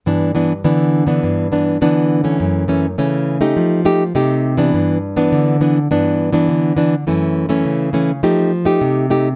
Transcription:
\new Staff \with { instrumentName = "Nylon-string guitar" } { \time 4/4 \key g \major \tempo 4 = 103 << { <e b d'>8 <e b d'>16 r16 <e b d'>8. <e b d'>8. <e b d'>8 <e b d'>8. <e a cis'>16~ | <e a cis'>8 <e a cis'>16 r16 <e a cis'>8. <a ees' g'>8. <a ees' g'>16 r16 <a ees' g'>8. <e b d'>16~ | <e b d'>8 r16 <e b d'>8. <e b d'>16 r16 <e b d'>8. <e b d'>8. <e b d'>16 r16 | <e a cis'>8. <e a cis'>8. <e a cis'>16 r16 <a ees' g'>8 r16 <a ees' g'>8. <a ees' g'>16 r16 | } \\ { g,4 d4 g,4 d4 | fis,4 cis4 f4 c4 | g,4 d4 g,4 d4 | fis,4 cis4 f4 c4 | } >> }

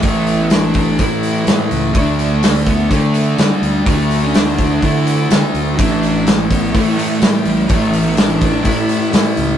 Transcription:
<<
  \new Staff \with { instrumentName = "Lead electric guitar" } { \time 4/4 \key d \major \tempo 4 = 125 a8. b16 d'4 e'4 r4 | d'4 r8 b8 a4 g4 | a8. cis'16 d'4 e'4 r4 | d'4 r8 b8 a8 a8 g4 |
a8. b16 d'4 e'4 r4 | }
  \new Staff \with { instrumentName = "Distorted electric guitar" } { \clef bass \time 4/4 \key d \major <a, e a>2 <a, e a>2 | <d a d'>2 <d a d'>2 | <d a d'>2 <d a d'>2 | <a, e a>2 <a, e a>2 |
<a, e a>2 <a, e a>2 | }
  \new Staff \with { instrumentName = "Fingered electric bass" } { \clef bass \time 4/4 \key d \major a,,2 a,4 a,16 r16 cis,8 | d,2 d4 d16 r16 d,8 | d,2 d4 d16 r16 d,8 | a,,2 a,4 a,16 r16 a,,8 |
a,,2 a,4 a,16 r16 cis,8 | }
  \new DrumStaff \with { instrumentName = "Drums" } \drummode { \time 4/4 <hho bd>8 hho8 <hho sn>8 <hho bd>8 <hho bd>8 hho8 <hho sn>8 hho8 | <hho bd>8 hho8 <hho sn>8 <hho bd>8 <hho bd>8 hho8 <hho sn>8 hho8 | <hho bd>8 hho8 <hho sn>8 <hho bd>8 <hho bd>8 hho8 <hho sn>8 hho8 | <hho bd>8 hho8 <hho sn>8 <hho bd>8 <hho bd>8 hho8 <hho sn>8 hho8 |
<hho bd>8 hho8 <hho sn>8 <hho bd>8 <hho bd>8 hho8 <hho sn>8 hho8 | }
>>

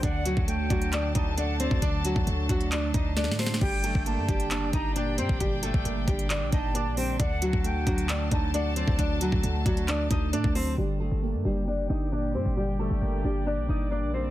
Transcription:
<<
  \new Staff \with { instrumentName = "Flute" } { \time 4/4 \key g \minor \tempo 4 = 134 fis''4 g''4. a''8 fis''8 d''8 | r1 | g''4 a''4. bes''8 g''8 g''8 | r2 r8 a''4 g''8 |
fis''4 g''4. a''8 fis''8 d''8 | r1 | r1 | r1 | }
  \new Staff \with { instrumentName = "String section" } { \time 4/4 \key g \minor << { <fis a' a''>1~ | <fis a' a''>1 | <g' d'' g''>1~ | <g' d'' g''>1 |
<fis a' a''>1~ | <fis a' a''>1 | <d'' g''>1~ | <d'' g''>1 | } \\ { d'1~ | d'1~ | d'1~ | d'1~ |
d'1~ | d'1 | g'1~ | g'1 | } >> }
  \new Staff \with { instrumentName = "Nylon-string guitar" } { \time 4/4 \key g \minor <d' d''>8 <fis fis'>4 <fis fis'>8 <d' d''>8 <ees' ees''>8 <d' d''>8 <c' c''>8 | <d' d''>8 <fis fis'>4 <fis fis'>8 <d' d''>8 <ees' ees''>8 <d' d''>8 <c' c''>8 | <g g'>8 <a a'>4 <g g'>8 <d' d''>8 <ees' ees''>8 <d' d''>8 <c' c''>8 | <g g'>8 <a a'>4 <g g'>8 <d' d''>8 <ees' ees''>8 <d' d''>8 <c' c''>8 |
<d' d''>8 <fis fis'>4 <fis fis'>8 <d' d''>8 <ees' ees''>8 <d' d''>8 <c' c''>8 | <d' d''>8 <fis fis'>4 <fis fis'>8 <d' d''>8 <ees' ees''>8 <d' d''>8 <c' c''>8 | <g g'>8 <a a'>4 <g g'>8 <d' d''>8 <ees' ees''>8 <d' d''>8 <c' c''>8 | <g g'>8 <a a'>4 <g g'>8 <d' d''>8 <ees' ees''>8 <d' d''>8 <c' c''>8 | }
  \new Staff \with { instrumentName = "Synth keys" } { \time 4/4 \key g \minor d8 fis8 a8 d'4 d'8 a8 fis8 | d8 fis8 a8 d'4 d'8 a8 fis8 | d8 g8 bes8 d'4 d'8 bes,8 g8 | d8 g8 bes8 d'4 d'8 bes8 g8 |
d8 fis8 a8 d'4 d'8 a8 fis8 | d8 fis8 a8 d'4 d'8 a8 fis8 | d8 g8 bes8 d'4 d'8 bes,8 g8 | d8 g8 bes8 d'4 d'8 bes8 g8 | }
  \new Staff \with { instrumentName = "808-style bass" } { \clef bass \time 4/4 \key g \minor d,8. d,8. d,4 d,4~ d,16 d,16~ | d,8. d,16 d,8 d,4 d,8. a,8. | g,,8. g,,8 g,16 fis,,4 g,,4 g,16 g,,16~ | g,,8. g,,16 g,,8 g,,8. bes,,16 g,,8. bes,,8. |
d,8. d,8. d,4 d,4~ d,16 d,16~ | d,8. d,16 d,8 d,4 d,8 a,16 d,8. | g,,8. g,,8 g,16 fis,,4 g,,4 g,16 g,,16~ | g,,8. g,,16 g,,8 g,,8. bes,,16 g,,8. bes,,8. | }
  \new DrumStaff \with { instrumentName = "Drums" } \drummode { \time 4/4 <hh bd>8 hh16 bd16 hh8 <hh bd>16 hh16 <hc hh>8 <hh bd>8 hh8 hh16 bd16 | <hh bd>8 hh16 bd16 hh8 <hh bd>16 hh16 <hc hh>8 <hh bd>8 \tuplet 3/2 { <hh sn>16 sn16 sn16 <hho sn>16 sn16 sn16 } | <cymc bd>8 hh16 bd16 hh8 <hh bd>16 hh16 <hc hh>8 <hh bd>8 hh8 hh16 bd16 | <hh bd>8 hh16 bd16 hh8 <hh bd>16 hh16 <hc hh>8 <hh bd>8 hh8 hho8 |
<hh bd>8 hh16 bd16 hh8 <hh bd>16 hh16 <hc hh>8 <hh bd>8 hh8 hh16 bd16 | <hh bd>8 hh16 bd16 hh8 <hh bd>16 hh16 <hc hh>8 <hh bd>8 hh16 bd16 hho8 | r4 r4 r4 r4 | r4 r4 r4 r4 | }
>>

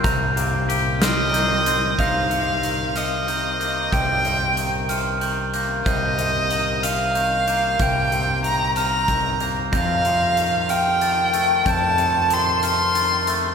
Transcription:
<<
  \new Staff \with { instrumentName = "Glockenspiel" } { \time 6/8 \key c \minor \tempo 4. = 62 g'''4 r8 f'''8 g'''8 g'''8 | g'''4 r8 f'''8 g'''8 g'''8 | g'''4 r8 f'''8 g'''8 g'''8 | g'''4 r8 f'''8 g'''8 g'''8 |
g'''4 r8 f'''8 g'''8 g'''8 | g'''4 r8 f'''8 a'''8 a'''8 | g'''4 r8 f'''8 a'''8 a'''8 | }
  \new Staff \with { instrumentName = "Violin" } { \time 6/8 \key c \minor r4. ees''4. | f''4. ees''4. | g''4 r2 | ees''4. f''4. |
g''4 bes''8 bes''4 r8 | f''4. g''4. | a''4 c'''8 c'''4 r8 | }
  \new Staff \with { instrumentName = "Pedal steel guitar" } { \time 6/8 \key c \minor << { <bes' ees'' bes''>2. | <c' ees' ees''>2.~ | <c' ees' ees''>2.~ | <c' ees' ees''>2.~ |
<c' ees' ees''>2. | <c' f' ees''>2.~ | <c' f' ees''>2. | } \\ { g''2. | bes'2.~ | bes'2. | c''2.~ |
c''2. | a'2.~ | a'2. | } >> }
  \new Staff \with { instrumentName = "Clean electric guitar" } { \clef bass \time 6/8 \key c \minor <c ees c' g'>8 bes8 g'8 c'8 ees8 c'8 | c8 c8 ees8 c8 ees8 bes8 | c8 c8 ees8 c8 ees8 bes8 | c8 c8 ees8 c8 ees8 bes8 |
c8 c8 ees8 c8 ees8 bes8 | f,8 c8 ees8 c8 ees8 a8 | f,8 c8 ees8 c8 ees8 a8 | }
  \new Staff \with { instrumentName = "Fingered electric bass" } { \clef bass \time 6/8 \key c \minor c,2. | c,2. | c,2. | c,2. |
c,2. | f,2. | f,2. | }
  \new DrumStaff \with { instrumentName = "Drums" } \drummode { \time 6/8 <hh bd>8 hh8 hh8 <hh sn>8 hh8 hh8 | <hh bd>8 hh8 hh8 hh8 hh8 hh8 | <hh bd>8 hh8 hh8 hh8 hh8 hh8 | <hh bd>8 hh8 hh8 hh8 hh8 hh8 |
<hh bd>8 hh8 hh8 hh8 <hh bd>8 hh8 | <hh bd>8 hh8 hh8 hh8 hh8 hh8 | <hh bd>8 hh8 hh8 hh8 hh8 hh8 | }
>>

